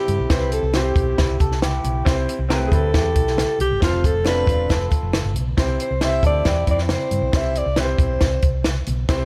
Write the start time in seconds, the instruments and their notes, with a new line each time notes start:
Already playing: clean electric guitar C4 E4, alto saxophone G4
0.08 fingered electric bass G2, closed hi-hat, high conga
0.19 fingered electric bass B1
0.30 fingered electric bass C2, grand piano C4 E4 G4 C5, alto saxophone B4, kick, snare, closed hi-hat
0.52 alto saxophone A4, closed hi-hat
0.63 fingered electric bass C2
0.73 grand piano C4 E4 G4 C5, alto saxophone G4, snare, closed hi-hat, high conga
0.96 fingered electric bass B1, kick, closed hi-hat, low conga
1.18 fingered electric bass C2, clean electric guitar C4 E4, kick, snare, closed hi-hat, muted conga, low conga
1.40 fingered electric bass C2, clean electric guitar A4, kick, closed hi-hat, muted conga
1.52 snare
1.62 clean electric guitar E4 G4, snare, closed hi-hat, high conga
1.84 fingered electric bass B1, closed hi-hat, high conga
2.05 fingered electric bass C2, grand piano C4 E4 G4 C5, kick, snare, closed hi-hat
2.28 closed hi-hat, muted conga
2.39 fingered electric bass C2
2.49 clean electric guitar A3 C4, grand piano C4 E4 G4 A#4, snare, closed hi-hat, high conga
2.56 grand piano B4
2.67 alto saxophone G#4
2.72 fingered electric bass D2, clean electric guitar C4 E4, alto saxophone A4, kick, closed hi-hat, low conga
2.94 fingered electric bass E2, clean electric guitar E4 G4, kick, snare, closed hi-hat, muted conga, low conga
3.15 fingered electric bass B1, kick, closed hi-hat, muted conga
3.27 snare
3.37 snare, closed hi-hat, high conga
3.59 fingered electric bass C2, alto saxophone G4, closed hi-hat, high conga
3.71 fingered electric bass G1
3.80 fingered electric bass F1, grand piano C4 F4 A4 C5, alto saxophone F4, kick, snare, closed hi-hat
4.04 alto saxophone A4, kick, closed hi-hat
4.14 fingered electric bass F1
4.24 clean electric guitar B3 D4, grand piano C4 F4 A4, alto saxophone B4, snare, closed hi-hat, high conga
4.46 fingered electric bass E1, clean electric guitar D4 F4, kick, closed hi-hat, low conga
4.69 fingered electric bass F1, clean electric guitar F4 A4, kick, snare, closed hi-hat, muted conga, low conga
4.91 kick, closed hi-hat, muted conga
5.03 fingered electric bass F1
5.13 snare, closed hi-hat, high conga
5.24 fingered electric bass G1
5.34 fingered electric bass B1, closed hi-hat, high conga
5.48 high conga
5.57 fingered electric bass C2, grand piano C4 E4 G4 C5, kick, snare, closed hi-hat
5.80 alto saxophone C5, closed hi-hat
5.91 fingered electric bass C2
6.01 grand piano C4 D#4 G4 C5, alto saxophone E5, snare, closed hi-hat, high conga
6.07 grand piano E4
6.23 fingered electric bass D2, clean electric guitar A4, alto saxophone D5, kick, closed hi-hat, low conga
6.45 fingered electric bass E2, clean electric guitar E4 G4, kick, snare, closed hi-hat, muted conga, low conga
6.67 fingered electric bass F2, clean electric guitar C4 E4, kick, closed hi-hat, muted conga
6.71 alto saxophone D5
6.78 snare
6.89 alto saxophone C5, snare, closed hi-hat, high conga
7.11 fingered electric bass G2, closed hi-hat, high conga
7.22 fingered electric bass B1
7.32 fingered electric bass C2, grand piano C4 E4 G4 C5, kick, snare, closed hi-hat
7.36 alto saxophone E5
7.55 alto saxophone D5, closed hi-hat
7.66 fingered electric bass C2
7.76 grand piano C4 E4 G4 B4, snare, closed hi-hat, high conga
7.80 alto saxophone C5, grand piano C5
7.98 fingered electric bass B1, kick, closed hi-hat, low conga
8.20 fingered electric bass C2, kick, snare, closed hi-hat, muted conga, low conga
8.42 fingered electric bass C2, kick, closed hi-hat, muted conga
8.64 snare, closed hi-hat, high conga
8.86 fingered electric bass B1, closed hi-hat, high conga
9.09 fingered electric bass C2, grand piano C4 E4 G4 C5, kick, snare, closed hi-hat